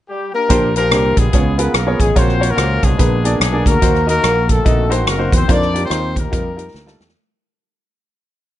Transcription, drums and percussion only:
0, 0, Header, 1, 2, 480
1, 0, Start_track
1, 0, Tempo, 416667
1, 578, Time_signature, 4, 2, 24, 8
1, 9905, End_track
2, 0, Start_track
2, 0, Title_t, "Drums"
2, 575, Note_on_c, 9, 42, 79
2, 576, Note_on_c, 9, 36, 91
2, 690, Note_off_c, 9, 42, 0
2, 691, Note_off_c, 9, 36, 0
2, 873, Note_on_c, 9, 42, 57
2, 988, Note_off_c, 9, 42, 0
2, 1053, Note_on_c, 9, 42, 70
2, 1055, Note_on_c, 9, 37, 101
2, 1168, Note_off_c, 9, 42, 0
2, 1170, Note_off_c, 9, 37, 0
2, 1347, Note_on_c, 9, 42, 54
2, 1349, Note_on_c, 9, 36, 80
2, 1462, Note_off_c, 9, 42, 0
2, 1464, Note_off_c, 9, 36, 0
2, 1533, Note_on_c, 9, 42, 70
2, 1538, Note_on_c, 9, 36, 89
2, 1648, Note_off_c, 9, 42, 0
2, 1654, Note_off_c, 9, 36, 0
2, 1828, Note_on_c, 9, 42, 69
2, 1944, Note_off_c, 9, 42, 0
2, 2008, Note_on_c, 9, 37, 95
2, 2017, Note_on_c, 9, 42, 75
2, 2124, Note_off_c, 9, 37, 0
2, 2132, Note_off_c, 9, 42, 0
2, 2300, Note_on_c, 9, 36, 81
2, 2305, Note_on_c, 9, 42, 64
2, 2415, Note_off_c, 9, 36, 0
2, 2420, Note_off_c, 9, 42, 0
2, 2491, Note_on_c, 9, 36, 88
2, 2491, Note_on_c, 9, 42, 73
2, 2606, Note_off_c, 9, 36, 0
2, 2606, Note_off_c, 9, 42, 0
2, 2633, Note_on_c, 9, 37, 27
2, 2748, Note_off_c, 9, 37, 0
2, 2799, Note_on_c, 9, 42, 61
2, 2914, Note_off_c, 9, 42, 0
2, 2971, Note_on_c, 9, 42, 65
2, 2973, Note_on_c, 9, 37, 89
2, 3086, Note_off_c, 9, 42, 0
2, 3088, Note_off_c, 9, 37, 0
2, 3259, Note_on_c, 9, 42, 59
2, 3260, Note_on_c, 9, 36, 76
2, 3374, Note_off_c, 9, 42, 0
2, 3375, Note_off_c, 9, 36, 0
2, 3448, Note_on_c, 9, 36, 92
2, 3448, Note_on_c, 9, 42, 73
2, 3563, Note_off_c, 9, 36, 0
2, 3563, Note_off_c, 9, 42, 0
2, 3744, Note_on_c, 9, 42, 66
2, 3859, Note_off_c, 9, 42, 0
2, 3931, Note_on_c, 9, 37, 106
2, 3940, Note_on_c, 9, 42, 87
2, 4046, Note_off_c, 9, 37, 0
2, 4055, Note_off_c, 9, 42, 0
2, 4214, Note_on_c, 9, 37, 34
2, 4215, Note_on_c, 9, 36, 83
2, 4223, Note_on_c, 9, 42, 66
2, 4329, Note_off_c, 9, 37, 0
2, 4330, Note_off_c, 9, 36, 0
2, 4338, Note_off_c, 9, 42, 0
2, 4401, Note_on_c, 9, 42, 79
2, 4403, Note_on_c, 9, 36, 82
2, 4517, Note_off_c, 9, 42, 0
2, 4518, Note_off_c, 9, 36, 0
2, 4550, Note_on_c, 9, 37, 31
2, 4665, Note_off_c, 9, 37, 0
2, 4708, Note_on_c, 9, 42, 64
2, 4823, Note_off_c, 9, 42, 0
2, 4881, Note_on_c, 9, 42, 72
2, 4883, Note_on_c, 9, 37, 95
2, 4997, Note_off_c, 9, 42, 0
2, 4998, Note_off_c, 9, 37, 0
2, 5174, Note_on_c, 9, 42, 59
2, 5176, Note_on_c, 9, 36, 71
2, 5290, Note_off_c, 9, 42, 0
2, 5291, Note_off_c, 9, 36, 0
2, 5367, Note_on_c, 9, 36, 87
2, 5368, Note_on_c, 9, 42, 70
2, 5482, Note_off_c, 9, 36, 0
2, 5483, Note_off_c, 9, 42, 0
2, 5663, Note_on_c, 9, 42, 78
2, 5778, Note_off_c, 9, 42, 0
2, 5843, Note_on_c, 9, 37, 95
2, 5852, Note_on_c, 9, 42, 73
2, 5958, Note_off_c, 9, 37, 0
2, 5967, Note_off_c, 9, 42, 0
2, 6134, Note_on_c, 9, 36, 88
2, 6140, Note_on_c, 9, 42, 69
2, 6249, Note_off_c, 9, 36, 0
2, 6255, Note_off_c, 9, 42, 0
2, 6324, Note_on_c, 9, 36, 85
2, 6324, Note_on_c, 9, 42, 73
2, 6439, Note_off_c, 9, 42, 0
2, 6440, Note_off_c, 9, 36, 0
2, 6471, Note_on_c, 9, 37, 27
2, 6586, Note_off_c, 9, 37, 0
2, 6631, Note_on_c, 9, 42, 57
2, 6746, Note_off_c, 9, 42, 0
2, 6807, Note_on_c, 9, 42, 74
2, 6809, Note_on_c, 9, 37, 90
2, 6922, Note_off_c, 9, 42, 0
2, 6924, Note_off_c, 9, 37, 0
2, 7100, Note_on_c, 9, 36, 80
2, 7104, Note_on_c, 9, 42, 59
2, 7215, Note_off_c, 9, 36, 0
2, 7219, Note_off_c, 9, 42, 0
2, 7290, Note_on_c, 9, 36, 103
2, 7292, Note_on_c, 9, 42, 76
2, 7405, Note_off_c, 9, 36, 0
2, 7407, Note_off_c, 9, 42, 0
2, 7588, Note_on_c, 9, 42, 67
2, 7703, Note_off_c, 9, 42, 0
2, 7772, Note_on_c, 9, 38, 44
2, 7887, Note_off_c, 9, 38, 0
2, 7916, Note_on_c, 9, 38, 54
2, 8031, Note_off_c, 9, 38, 0
2, 8069, Note_on_c, 9, 38, 77
2, 8159, Note_off_c, 9, 38, 0
2, 8159, Note_on_c, 9, 38, 75
2, 8275, Note_off_c, 9, 38, 0
2, 9905, End_track
0, 0, End_of_file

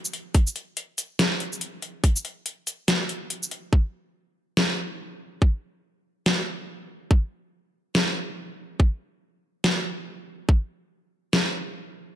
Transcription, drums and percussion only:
0, 0, Header, 1, 2, 480
1, 0, Start_track
1, 0, Tempo, 422535
1, 392, Time_signature, 4, 2, 24, 8
1, 13807, End_track
2, 0, Start_track
2, 0, Title_t, "Drums"
2, 55, Note_on_c, 9, 82, 80
2, 153, Note_on_c, 9, 42, 51
2, 168, Note_off_c, 9, 82, 0
2, 266, Note_off_c, 9, 42, 0
2, 392, Note_on_c, 9, 42, 78
2, 393, Note_on_c, 9, 36, 118
2, 505, Note_off_c, 9, 42, 0
2, 507, Note_off_c, 9, 36, 0
2, 534, Note_on_c, 9, 82, 79
2, 633, Note_on_c, 9, 42, 54
2, 648, Note_off_c, 9, 82, 0
2, 746, Note_off_c, 9, 42, 0
2, 872, Note_on_c, 9, 42, 80
2, 986, Note_off_c, 9, 42, 0
2, 1113, Note_on_c, 9, 42, 54
2, 1113, Note_on_c, 9, 82, 77
2, 1227, Note_off_c, 9, 42, 0
2, 1227, Note_off_c, 9, 82, 0
2, 1354, Note_on_c, 9, 38, 106
2, 1354, Note_on_c, 9, 42, 77
2, 1468, Note_off_c, 9, 38, 0
2, 1468, Note_off_c, 9, 42, 0
2, 1593, Note_on_c, 9, 42, 49
2, 1707, Note_off_c, 9, 42, 0
2, 1734, Note_on_c, 9, 82, 54
2, 1831, Note_on_c, 9, 42, 77
2, 1847, Note_off_c, 9, 82, 0
2, 1944, Note_off_c, 9, 42, 0
2, 2072, Note_on_c, 9, 42, 51
2, 2186, Note_off_c, 9, 42, 0
2, 2313, Note_on_c, 9, 42, 82
2, 2314, Note_on_c, 9, 36, 116
2, 2427, Note_off_c, 9, 36, 0
2, 2427, Note_off_c, 9, 42, 0
2, 2454, Note_on_c, 9, 82, 81
2, 2553, Note_on_c, 9, 42, 53
2, 2568, Note_off_c, 9, 82, 0
2, 2667, Note_off_c, 9, 42, 0
2, 2792, Note_on_c, 9, 42, 79
2, 2905, Note_off_c, 9, 42, 0
2, 3033, Note_on_c, 9, 42, 55
2, 3033, Note_on_c, 9, 82, 86
2, 3147, Note_off_c, 9, 42, 0
2, 3147, Note_off_c, 9, 82, 0
2, 3273, Note_on_c, 9, 38, 112
2, 3273, Note_on_c, 9, 42, 79
2, 3386, Note_off_c, 9, 38, 0
2, 3386, Note_off_c, 9, 42, 0
2, 3513, Note_on_c, 9, 42, 50
2, 3626, Note_off_c, 9, 42, 0
2, 3752, Note_on_c, 9, 42, 83
2, 3865, Note_off_c, 9, 42, 0
2, 3895, Note_on_c, 9, 82, 82
2, 3992, Note_on_c, 9, 42, 54
2, 4008, Note_off_c, 9, 82, 0
2, 4106, Note_off_c, 9, 42, 0
2, 4233, Note_on_c, 9, 36, 113
2, 4347, Note_off_c, 9, 36, 0
2, 5193, Note_on_c, 9, 38, 109
2, 5306, Note_off_c, 9, 38, 0
2, 6154, Note_on_c, 9, 36, 118
2, 6268, Note_off_c, 9, 36, 0
2, 7113, Note_on_c, 9, 38, 117
2, 7227, Note_off_c, 9, 38, 0
2, 8074, Note_on_c, 9, 36, 121
2, 8187, Note_off_c, 9, 36, 0
2, 9031, Note_on_c, 9, 38, 115
2, 9144, Note_off_c, 9, 38, 0
2, 9993, Note_on_c, 9, 36, 120
2, 10107, Note_off_c, 9, 36, 0
2, 10952, Note_on_c, 9, 38, 115
2, 11066, Note_off_c, 9, 38, 0
2, 11913, Note_on_c, 9, 36, 119
2, 12026, Note_off_c, 9, 36, 0
2, 12872, Note_on_c, 9, 38, 110
2, 12986, Note_off_c, 9, 38, 0
2, 13807, End_track
0, 0, End_of_file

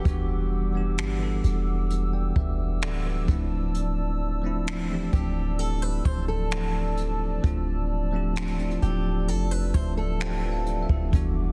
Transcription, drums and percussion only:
0, 0, Header, 1, 2, 480
1, 0, Start_track
1, 0, Tempo, 923077
1, 27, Time_signature, 4, 2, 24, 8
1, 5991, End_track
2, 0, Start_track
2, 0, Title_t, "Drums"
2, 27, Note_on_c, 9, 36, 114
2, 28, Note_on_c, 9, 42, 72
2, 79, Note_off_c, 9, 36, 0
2, 80, Note_off_c, 9, 42, 0
2, 509, Note_on_c, 9, 42, 67
2, 514, Note_on_c, 9, 26, 109
2, 561, Note_off_c, 9, 42, 0
2, 566, Note_off_c, 9, 26, 0
2, 748, Note_on_c, 9, 42, 62
2, 800, Note_off_c, 9, 42, 0
2, 990, Note_on_c, 9, 42, 61
2, 1042, Note_off_c, 9, 42, 0
2, 1227, Note_on_c, 9, 36, 98
2, 1279, Note_off_c, 9, 36, 0
2, 1464, Note_on_c, 9, 42, 58
2, 1470, Note_on_c, 9, 26, 112
2, 1516, Note_off_c, 9, 42, 0
2, 1522, Note_off_c, 9, 26, 0
2, 1706, Note_on_c, 9, 42, 64
2, 1707, Note_on_c, 9, 36, 107
2, 1758, Note_off_c, 9, 42, 0
2, 1759, Note_off_c, 9, 36, 0
2, 1947, Note_on_c, 9, 42, 72
2, 1999, Note_off_c, 9, 42, 0
2, 2428, Note_on_c, 9, 42, 62
2, 2433, Note_on_c, 9, 26, 108
2, 2480, Note_off_c, 9, 42, 0
2, 2485, Note_off_c, 9, 26, 0
2, 2668, Note_on_c, 9, 36, 83
2, 2668, Note_on_c, 9, 42, 60
2, 2720, Note_off_c, 9, 36, 0
2, 2720, Note_off_c, 9, 42, 0
2, 2911, Note_on_c, 9, 42, 61
2, 2963, Note_off_c, 9, 42, 0
2, 3147, Note_on_c, 9, 36, 102
2, 3199, Note_off_c, 9, 36, 0
2, 3385, Note_on_c, 9, 42, 59
2, 3391, Note_on_c, 9, 26, 114
2, 3437, Note_off_c, 9, 42, 0
2, 3443, Note_off_c, 9, 26, 0
2, 3625, Note_on_c, 9, 42, 62
2, 3677, Note_off_c, 9, 42, 0
2, 3867, Note_on_c, 9, 42, 69
2, 3868, Note_on_c, 9, 36, 113
2, 3919, Note_off_c, 9, 42, 0
2, 3920, Note_off_c, 9, 36, 0
2, 4347, Note_on_c, 9, 42, 69
2, 4354, Note_on_c, 9, 26, 110
2, 4399, Note_off_c, 9, 42, 0
2, 4406, Note_off_c, 9, 26, 0
2, 4407, Note_on_c, 9, 42, 57
2, 4459, Note_off_c, 9, 42, 0
2, 4468, Note_on_c, 9, 42, 50
2, 4520, Note_off_c, 9, 42, 0
2, 4528, Note_on_c, 9, 42, 36
2, 4580, Note_off_c, 9, 42, 0
2, 4588, Note_on_c, 9, 42, 63
2, 4640, Note_off_c, 9, 42, 0
2, 4829, Note_on_c, 9, 42, 59
2, 4881, Note_off_c, 9, 42, 0
2, 5066, Note_on_c, 9, 36, 97
2, 5118, Note_off_c, 9, 36, 0
2, 5304, Note_on_c, 9, 42, 59
2, 5310, Note_on_c, 9, 26, 111
2, 5356, Note_off_c, 9, 42, 0
2, 5362, Note_off_c, 9, 26, 0
2, 5545, Note_on_c, 9, 42, 61
2, 5597, Note_off_c, 9, 42, 0
2, 5665, Note_on_c, 9, 36, 93
2, 5717, Note_off_c, 9, 36, 0
2, 5788, Note_on_c, 9, 36, 120
2, 5788, Note_on_c, 9, 42, 75
2, 5840, Note_off_c, 9, 36, 0
2, 5840, Note_off_c, 9, 42, 0
2, 5991, End_track
0, 0, End_of_file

